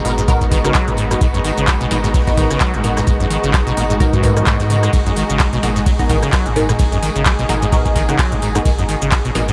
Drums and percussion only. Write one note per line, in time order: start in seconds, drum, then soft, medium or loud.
0.05 open hi-hat loud
0.05 tambourine medium
0.18 closed hi-hat soft
0.18 shaker medium
0.28 kick loud
0.28 closed hi-hat medium
0.28 mid tom medium
0.28 tambourine medium
0.28 shaker medium
0.41 kick medium
0.41 closed hi-hat soft
0.41 shaker soft
0.51 kick medium
0.51 snare medium
0.51 snare soft
0.51 open hi-hat loud
0.51 tambourine medium
0.65 cross-stick medium
0.65 closed hi-hat soft
0.65 shaker medium
0.74 kick loud
0.74 snare loud
0.74 clap loud
0.74 closed hi-hat medium
0.74 tambourine medium
0.74 shaker medium
0.88 closed hi-hat soft
0.88 mid tom medium
0.88 shaker soft
0.97 open hi-hat loud
0.97 tambourine medium
1.11 cross-stick medium
1.11 open hi-hat medium
1.11 shaker medium
1.21 kick loud
1.21 closed hi-hat medium
1.21 tambourine medium
1.21 shaker medium
1.34 closed hi-hat soft
1.34 shaker soft
1.44 snare medium
1.44 open hi-hat loud
1.44 tambourine medium
1.57 closed hi-hat soft
1.57 shaker medium
1.67 kick loud
1.67 snare loud
1.67 clap loud
1.67 closed hi-hat medium
1.67 tambourine loud
1.67 shaker medium
1.81 closed hi-hat soft
1.81 shaker soft
1.91 snare medium
1.91 open hi-hat loud
1.91 tambourine medium
2.03 snare soft
2.03 closed hi-hat soft
2.03 shaker medium
2.14 kick loud
2.14 closed hi-hat medium
2.14 open hi-hat medium
2.14 shaker medium
2.27 kick medium
2.27 closed hi-hat soft
2.27 shaker soft
2.37 kick medium
2.37 snare soft
2.37 mid tom loud
2.37 open hi-hat loud
2.37 tambourine medium
2.51 cross-stick medium
2.51 closed hi-hat soft
2.51 shaker medium
2.60 kick loud
2.60 snare loud
2.60 clap loud
2.60 closed hi-hat medium
2.60 tambourine medium
2.60 shaker medium
2.74 closed hi-hat soft
2.74 shaker soft
2.83 mid tom medium
2.83 open hi-hat loud
2.83 tambourine medium
2.97 cross-stick medium
2.97 snare soft
2.97 closed hi-hat soft
2.97 mid tom loud
2.97 shaker medium
3.07 kick loud
3.07 closed hi-hat medium
3.07 tambourine medium
3.07 shaker medium
3.20 closed hi-hat soft
3.20 shaker soft
3.30 snare soft
3.30 open hi-hat loud
3.30 tambourine medium
3.44 closed hi-hat soft
3.44 shaker medium
3.54 kick loud
3.54 snare loud
3.54 clap loud
3.54 closed hi-hat medium
3.54 tambourine loud
3.54 shaker medium
3.67 closed hi-hat soft
3.67 shaker soft
3.77 open hi-hat loud
3.77 tambourine medium
3.90 closed hi-hat soft
3.90 shaker medium
4.00 kick loud
4.00 closed hi-hat medium
4.00 mid tom medium
4.00 tambourine medium
4.00 shaker medium
4.13 kick medium
4.13 closed hi-hat soft
4.13 shaker soft
4.23 kick medium
4.23 snare soft
4.23 open hi-hat loud
4.23 tambourine medium
4.37 cross-stick medium
4.37 closed hi-hat soft
4.37 shaker medium
4.46 kick loud
4.46 snare loud
4.46 clap loud
4.46 closed hi-hat medium
4.46 tambourine medium
4.46 shaker medium
4.60 snare soft
4.60 closed hi-hat soft
4.60 mid tom medium
4.60 shaker soft
4.70 open hi-hat loud
4.70 tambourine medium
4.83 cross-stick medium
4.83 open hi-hat medium
4.83 shaker medium
4.93 kick loud
4.93 closed hi-hat medium
4.93 ride medium
4.93 tambourine medium
4.93 shaker medium
5.06 closed hi-hat soft
5.06 shaker soft
5.16 snare medium
5.16 open hi-hat loud
5.16 tambourine medium
5.30 closed hi-hat soft
5.30 shaker medium
5.39 kick loud
5.39 snare loud
5.39 clap loud
5.39 closed hi-hat medium
5.39 ride medium
5.39 tambourine medium
5.39 shaker medium
5.53 closed hi-hat soft
5.53 shaker soft
5.63 snare medium
5.63 open hi-hat loud
5.63 tambourine medium
5.76 snare soft
5.76 closed hi-hat soft
5.76 shaker medium
5.86 kick loud
5.86 closed hi-hat medium
5.86 open hi-hat medium
5.86 ride medium
5.86 shaker medium
5.99 kick medium
5.99 closed hi-hat soft
5.99 shaker soft
6.09 kick medium
6.09 snare soft
6.09 mid tom medium
6.09 open hi-hat loud
6.09 tambourine medium
6.23 cross-stick medium
6.23 closed hi-hat soft
6.23 shaker medium
6.32 kick loud
6.32 snare loud
6.32 clap loud
6.32 closed hi-hat medium
6.32 ride medium
6.32 tambourine medium
6.32 shaker medium
6.46 closed hi-hat soft
6.46 shaker soft
6.56 mid tom medium
6.56 open hi-hat loud
6.56 tambourine medium
6.68 cross-stick medium
6.68 snare soft
6.68 closed hi-hat soft
6.68 mid tom medium
6.68 shaker medium
6.79 kick loud
6.79 closed hi-hat medium
6.79 ride medium
6.79 tambourine loud
6.79 shaker medium
6.92 closed hi-hat soft
6.92 shaker soft
7.03 snare soft
7.03 open hi-hat loud
7.03 tambourine medium
7.16 closed hi-hat soft
7.16 shaker medium
7.26 kick loud
7.26 snare loud
7.26 clap loud
7.26 closed hi-hat medium
7.26 ride medium
7.26 tambourine medium
7.26 shaker medium
7.39 closed hi-hat soft
7.39 shaker soft
7.49 snare medium
7.49 open hi-hat loud
7.49 tambourine medium
7.62 closed hi-hat soft
7.62 shaker medium
7.72 kick loud
7.72 closed hi-hat medium
7.72 mid tom medium
7.72 ride medium
7.72 tambourine medium
7.72 shaker medium
7.85 kick medium
7.85 closed hi-hat soft
7.85 shaker soft
7.96 kick medium
7.96 snare soft
7.96 snare medium
7.96 open hi-hat loud
7.96 tambourine medium
8.09 cross-stick medium
8.09 closed hi-hat soft
8.09 shaker medium
8.19 kick loud
8.19 snare loud
8.19 clap loud
8.19 closed hi-hat medium
8.19 ride medium
8.19 tambourine medium
8.19 shaker medium
8.32 closed hi-hat soft
8.32 mid tom medium
8.32 shaker soft
8.42 open hi-hat loud
8.42 tambourine medium
8.55 cross-stick medium
8.55 open hi-hat medium
8.55 shaker medium
8.65 kick loud
8.65 closed hi-hat medium
8.65 ride medium
8.65 tambourine medium
8.65 shaker medium
8.78 closed hi-hat soft
8.78 shaker soft
8.88 snare medium
8.88 open hi-hat loud
8.88 tambourine medium
9.02 closed hi-hat soft
9.02 shaker medium
9.12 kick loud
9.12 snare loud
9.12 clap loud
9.12 closed hi-hat medium
9.12 ride medium
9.12 tambourine medium
9.12 shaker medium
9.25 closed hi-hat soft
9.25 shaker soft
9.35 snare medium
9.35 open hi-hat loud
9.35 tambourine medium
9.48 snare soft
9.48 closed hi-hat soft
9.48 shaker medium